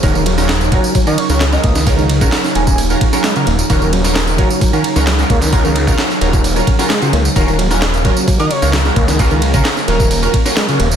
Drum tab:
RD |x-x-xxx-x-x-x-x-|x-x-x-x-x-x-xxx-|x-x-xxx-x-x-x-x-|x-x-x-x-x-x-xxx-|
TB |xx-xxx-xxx-xxx-x|xx-xxx-xxx-xxx-x|xx-xxx-xxx-xxx-x|xx-xxx-xxx-xxx-x|
CP |----x-------x---|----x-------x---|----x-------x---|----x-------x---|
SD |---oo------ooo-o|----oo-----oo---|---oo------ooo-o|----oo-----oo---|
BD |o-----o-o-----o-|o--o---o--o-----|o-----o-o-----o-|o--o---o--o-----|

RD |x-x-xxx-x-x-x-x-|x-x-x-x-x-x-xxx-|
TB |xx-xxx-xxx-xxx-x|xx-xxx-xxx-xxx-x|
CP |----x-------x---|----x-------x---|
SD |---oo------ooo-o|----oo-----oo---|
BD |o-----o-o-----o-|o--o---o--o-----|